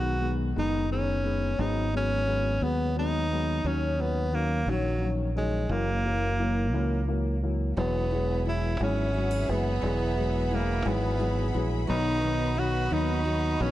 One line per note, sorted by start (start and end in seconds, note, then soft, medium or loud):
0.00 0.53 B1 medium
0.00 0.13 D#3 medium
0.00 0.13 G#3 medium
0.00 0.13 B3 medium
0.00 0.31 F#4 medium
0.21 0.48 D#3 medium
0.21 0.48 G#3 medium
0.21 0.48 B3 medium
0.56 1.55 F#1 medium
0.56 0.82 D#3 medium
0.56 0.82 G#3 medium
0.56 0.83 B3 medium
0.56 0.90 D#4 medium
0.90 1.16 D#3 medium
0.90 1.17 G#3 soft
0.90 1.17 B3 medium
0.90 1.62 C#4 medium
1.24 1.51 D#3 medium
1.24 1.51 G#3 medium
1.24 1.51 B3 medium
1.58 2.58 G#1 medium
1.58 1.85 F#3 medium
1.58 1.85 G#3 medium
1.58 1.85 B3 medium
1.58 1.94 D#4 medium
1.93 2.19 F#3 medium
1.93 2.19 G#3 soft
1.93 2.20 B3 medium
1.97 2.65 C#4 medium
2.26 2.53 F#3 medium
2.26 2.53 G#3 medium
2.26 2.53 B3 medium
2.61 3.60 D#2 medium
2.61 2.88 F#3 medium
2.61 2.88 G#3 medium
2.61 2.88 B3 medium
2.61 2.97 B3 medium
2.96 3.22 F#3 medium
2.96 3.22 G#3 medium
2.96 3.22 B3 medium
2.96 3.69 D#4 medium
3.30 3.56 F#3 medium
3.30 3.56 G#3 medium
3.30 3.56 B3 medium
3.64 4.63 D#2 medium
3.64 3.91 D#3 medium
3.64 3.91 F#3 medium
3.64 3.91 C#4 medium
3.64 4.02 C#4 medium
3.99 4.24 D#3 medium
3.99 4.24 F#3 medium
3.99 4.36 B3 medium
3.99 4.25 C#4 medium
4.32 4.58 D#3 medium
4.32 4.59 F#3 medium
4.32 4.71 A#3 medium
4.32 4.59 C#4 medium
4.66 5.66 A#1 medium
4.66 4.93 D#3 medium
4.66 4.93 F#3 medium
4.66 5.10 F#3 medium
4.66 4.93 C#4 medium
5.00 5.27 D#3 medium
5.00 5.27 F#3 medium
5.00 5.27 C#4 medium
5.36 5.62 D#3 medium
5.36 5.62 F#3 medium
5.36 5.73 G#3 medium
5.36 5.62 C#4 medium
5.69 6.73 F#1 loud
5.69 5.96 E3 medium
5.69 5.96 F#3 medium
5.69 5.96 A#3 medium
5.69 7.09 A#3 medium
6.04 6.30 E3 medium
6.04 6.30 F#3 medium
6.04 6.30 A#3 medium
6.39 6.65 E3 medium
6.39 6.65 F#3 medium
6.39 6.66 A#3 medium
6.73 7.73 C#2 medium
6.73 7.00 E3 medium
6.73 7.00 F#3 medium
6.73 7.00 A#3 medium
7.08 7.34 E3 medium
7.08 7.34 F#3 medium
7.08 7.34 A#3 medium
7.43 7.69 E3 medium
7.43 7.69 F#3 soft
7.43 7.69 A#3 medium
7.77 8.77 E1 loud
7.77 8.03 E3 medium
7.77 9.81 F#3 medium
7.77 8.03 F#3 medium
7.77 8.03 G#3 medium
7.77 8.43 B3 medium
7.77 11.85 G#4 medium
7.77 9.14 G#4 medium
7.77 11.85 E5 medium
7.77 11.85 F#5 medium
7.77 13.71 B5 medium
8.11 8.38 E3 medium
8.11 8.38 F#3 medium
8.11 8.38 G#3 medium
8.11 8.79 B3 soft
8.45 8.72 E3 medium
8.45 8.72 F#3 medium
8.45 8.72 G#3 medium
8.45 9.46 E4 medium
8.45 8.79 E4 medium
8.79 9.45 G#1 medium
8.79 9.06 E3 medium
8.79 9.06 F#3 medium
8.79 9.07 G#3 medium
8.79 10.85 B3 medium
8.79 9.51 C#4 medium
9.14 9.41 F#3 medium
9.14 9.41 G#3 medium
9.14 9.31 F#4 medium
9.31 9.81 G#4 soft
9.48 9.81 F#1 medium
9.48 9.75 E3 medium
9.48 9.75 F#3 medium
9.48 9.75 G#3 medium
9.48 10.56 B3 medium
9.48 10.49 E4 soft
9.82 10.82 E1 loud
9.82 10.10 E3 medium
9.82 11.87 F#3 medium
9.82 10.09 F#3 medium
9.82 10.10 G#3 medium
9.82 11.18 G#4 medium
10.17 10.43 E3 medium
10.17 10.43 F#3 medium
10.17 10.43 G#3 medium
10.51 10.77 E3 medium
10.51 10.78 F#3 medium
10.51 10.78 G#3 medium
10.51 10.89 A#3 medium
10.51 11.53 E4 medium
10.85 11.50 G#1 medium
10.85 11.11 E3 medium
10.85 11.12 F#3 medium
10.85 11.12 G#3 medium
10.85 12.21 B3 medium
10.85 11.64 B3 medium
11.19 11.46 E3 medium
11.19 11.46 F#3 medium
11.19 11.46 G#3 medium
11.19 11.87 G#4 medium
11.54 11.87 A#1 medium
11.54 11.80 E3 medium
11.54 11.80 F#3 medium
11.54 11.80 G#3 medium
11.54 11.95 E4 medium
11.87 12.88 B1 loud
11.87 12.14 D#3 medium
11.87 13.71 F#3 medium
11.87 12.14 F#3 medium
11.87 12.14 B3 medium
11.87 12.60 D#4 medium
11.87 13.24 F#4 medium
11.87 13.71 F#4 medium
11.87 13.71 B4 medium
11.87 13.71 D#5 medium
12.22 12.49 D#3 medium
12.22 12.49 F#3 medium
12.22 12.89 B3 medium
12.22 12.49 B3 medium
12.56 12.83 D#3 medium
12.56 12.83 F#3 medium
12.56 12.83 B3 medium
12.56 13.59 D#4 soft
12.56 12.94 F#4 medium
12.90 13.56 D#2 medium
12.90 13.17 D#3 medium
12.90 13.17 F#3 medium
12.90 13.71 B3 medium
12.90 13.17 B3 medium
12.90 13.63 D#4 medium
13.25 13.52 F#3 medium
13.25 13.52 B3 medium
13.25 13.71 F#4 medium
13.59 13.71 A#1 medium
13.59 13.71 D#3 medium
13.59 13.71 F#3 medium
13.59 13.71 B3 medium
13.59 13.71 C#4 loud
13.59 13.71 D#4 soft